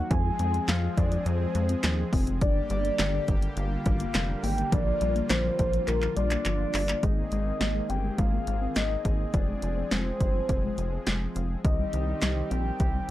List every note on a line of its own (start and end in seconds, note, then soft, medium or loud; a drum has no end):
0.00 0.12 F#5 loud
0.11 0.31 F2 loud
0.11 2.39 F3 medium
0.11 0.20 F3 loud
0.11 2.39 G#3 medium
0.11 2.39 C4 medium
0.11 2.39 G#4 medium
0.11 0.68 G#5 loud
0.11 kick loud
0.11 closed hi-hat medium
0.25 0.34 F3 medium
0.39 0.60 F2 loud
0.39 0.48 G#3 medium
0.39 closed hi-hat medium
0.54 0.63 C4 medium
0.54 closed hi-hat medium
0.68 0.88 F2 loud
0.68 0.77 F3 medium
0.68 0.99 F5 loud
0.68 snare loud
0.68 clap loud
0.68 closed hi-hat medium
0.83 0.92 F3 medium
0.97 1.18 F2 loud
0.97 1.06 F3 medium
0.97 1.28 D5 loud
0.97 kick medium
0.97 closed hi-hat medium
1.12 1.21 F3 medium
1.12 closed hi-hat medium
1.26 1.46 F2 loud
1.26 1.35 F3 loud
1.26 2.13 C5 medium
1.26 closed hi-hat medium
1.40 1.49 F3 medium
1.55 1.75 F2 loud
1.55 1.64 G#3 medium
1.55 closed hi-hat medium
1.69 1.78 C4 medium
1.69 closed hi-hat medium
1.83 2.04 D#2 medium
1.83 1.93 F3 medium
1.83 snare loud
1.83 clap loud
1.83 closed hi-hat medium
1.98 2.07 F3 medium
2.13 2.43 F1 loud
2.13 2.22 C4 medium
2.13 kick medium
2.13 open hi-hat medium
2.27 2.36 C4 medium
2.27 closed hi-hat medium
2.41 2.62 G1 loud
2.41 2.50 D3 loud
2.41 6.99 D3 medium
2.41 6.99 G3 medium
2.41 6.99 A#3 medium
2.41 4.70 G4 medium
2.41 2.68 D5 loud
2.41 kick loud
2.41 closed hi-hat medium
2.56 2.65 D3 medium
2.70 2.90 G1 medium
2.70 2.79 G3 medium
2.70 3.24 D5 loud
2.70 closed hi-hat medium
2.85 2.94 A#3 medium
2.85 closed hi-hat medium
2.99 3.19 G1 loud
2.99 3.08 D3 medium
2.99 snare loud
2.99 clap loud
2.99 closed hi-hat medium
3.14 3.22 D3 medium
3.28 3.48 G1 loud
3.28 3.37 D3 medium
3.28 kick medium
3.28 closed hi-hat medium
3.42 3.51 D3 medium
3.42 closed hi-hat medium
3.57 3.77 G1 loud
3.57 3.66 D3 medium
3.57 4.45 F5 loud
3.57 closed hi-hat medium
3.71 3.80 D3 medium
3.86 4.06 G1 loud
3.86 3.95 G3 medium
3.86 kick loud
3.86 closed hi-hat medium
4.00 4.09 A#3 medium
4.00 closed hi-hat medium
4.14 4.35 F1 loud
4.14 4.24 D3 medium
4.14 snare loud
4.14 clap loud
4.14 closed hi-hat medium
4.29 4.38 D3 medium
4.43 4.64 G#1 loud
4.43 4.53 A#3 medium
4.43 4.72 G5 loud
4.43 open hi-hat medium
4.58 4.67 A#3 medium
4.58 closed hi-hat medium
4.72 4.93 A#1 loud
4.72 4.81 F3 loud
4.72 7.01 F4 medium
4.72 5.31 D5 loud
4.72 kick loud
4.72 closed hi-hat medium
4.87 4.96 F3 medium
5.01 5.21 A#1 loud
5.01 5.10 G3 medium
5.01 closed hi-hat medium
5.16 5.25 A#3 medium
5.16 closed hi-hat medium
5.30 5.50 A#1 loud
5.30 5.39 F3 medium
5.30 5.89 C5 loud
5.30 snare loud
5.30 clap loud
5.30 closed hi-hat medium
5.45 5.53 F3 medium
5.59 5.79 A#1 loud
5.59 5.68 F3 medium
5.59 kick medium
5.59 closed hi-hat medium
5.73 5.82 F3 medium
5.73 closed hi-hat medium
5.87 6.08 A#1 loud
5.87 5.97 F3 medium
5.87 6.16 A#4 medium
5.87 clap medium
5.87 closed hi-hat medium
6.02 6.11 F3 medium
6.02 clap medium
6.17 6.37 A#1 loud
6.17 6.25 G3 medium
6.17 7.05 D5 loud
6.17 closed hi-hat medium
6.31 6.40 A#3 medium
6.31 clap medium
6.31 closed hi-hat medium
6.45 6.66 G1 medium
6.45 6.54 F3 medium
6.45 clap medium
6.45 closed hi-hat medium
6.60 6.69 F3 medium
6.74 6.94 G1 medium
6.74 6.83 A#3 medium
6.74 clap loud
6.74 open hi-hat medium
6.89 6.97 A#3 medium
6.89 clap loud
6.89 closed hi-hat medium
7.03 7.23 G#1 loud
7.03 9.32 D#3 medium
7.03 7.12 G#3 loud
7.03 9.32 A#3 medium
7.03 11.61 C4 medium
7.03 11.61 G#4 medium
7.03 7.91 D#5 loud
7.03 kick loud
7.03 closed hi-hat medium
7.17 7.26 A#3 medium
7.32 7.52 G#1 medium
7.32 7.41 G#3 medium
7.32 closed hi-hat medium
7.46 7.55 C4 medium
7.61 7.81 G#1 medium
7.61 7.70 A#3 medium
7.61 snare loud
7.61 closed hi-hat medium
7.75 7.84 G#3 medium
7.89 8.10 G1 medium
7.89 7.98 C4 medium
7.89 8.20 G5 loud
7.89 closed hi-hat medium
8.04 8.13 G#3 medium
8.18 8.39 G#1 loud
8.18 8.27 G#3 medium
8.18 8.78 F5 loud
8.18 kick medium
8.18 closed hi-hat medium
8.33 8.42 A#3 medium
8.47 8.67 G#1 loud
8.47 8.56 G#3 medium
8.47 closed hi-hat medium
8.62 8.70 C4 medium
8.76 8.96 G#1 loud
8.76 8.85 A#3 medium
8.76 9.35 D#5 loud
8.76 snare loud
8.76 closed hi-hat medium
9.05 9.25 G#1 loud
9.05 9.14 G#4 medium
9.05 kick medium
9.05 closed hi-hat medium
9.33 9.54 F1 loud
9.33 11.62 F3 medium
9.33 9.43 F3 loud
9.33 11.62 G#3 medium
9.33 9.93 D5 loud
9.33 kick loud
9.33 closed hi-hat medium
9.48 9.57 G#3 medium
9.62 9.83 F1 loud
9.62 9.71 F3 medium
9.62 closed hi-hat medium
9.77 9.86 C4 medium
9.91 10.12 F1 loud
9.91 10.00 G#3 medium
9.91 11.36 C5 loud
9.91 snare loud
9.91 closed hi-hat medium
10.06 10.15 F3 medium
10.20 10.41 G1 medium
10.20 10.29 C4 medium
10.20 kick medium
10.20 closed hi-hat medium
10.34 10.43 F3 medium
10.49 10.69 F1 loud
10.49 10.58 F3 medium
10.49 kick medium
10.49 closed hi-hat medium
10.64 10.72 G#3 medium
10.78 10.98 F1 loud
10.78 10.87 F3 medium
10.78 closed hi-hat medium
10.92 11.01 C4 medium
11.07 11.27 F1 loud
11.07 11.16 G#3 medium
11.07 snare loud
11.07 closed hi-hat medium
11.36 11.56 F1 loud
11.36 11.45 F5 medium
11.36 closed hi-hat medium
11.64 11.85 C2 loud
11.64 13.11 D#3 medium
11.64 11.73 D#3 loud
11.64 13.11 G3 medium
11.64 13.11 C4 medium
11.64 13.11 G4 medium
11.64 12.53 D#5 loud
11.64 kick loud
11.64 closed hi-hat medium
11.79 11.88 G3 medium
11.93 12.14 C2 loud
11.93 12.02 D#3 medium
11.93 closed hi-hat medium
12.08 12.17 C4 medium
12.22 12.43 C2 loud
12.22 12.31 G3 medium
12.22 snare loud
12.22 clap loud
12.22 closed hi-hat medium
12.37 12.45 D#3 medium
12.51 12.71 A#1 loud
12.51 12.60 C4 medium
12.51 12.80 G5 loud
12.51 closed hi-hat medium
12.65 12.74 D#3 medium
12.80 13.00 C2 loud
12.80 12.89 D#3 medium
12.80 13.11 G5 loud
12.80 kick medium
12.80 closed hi-hat medium
12.94 13.03 G3 medium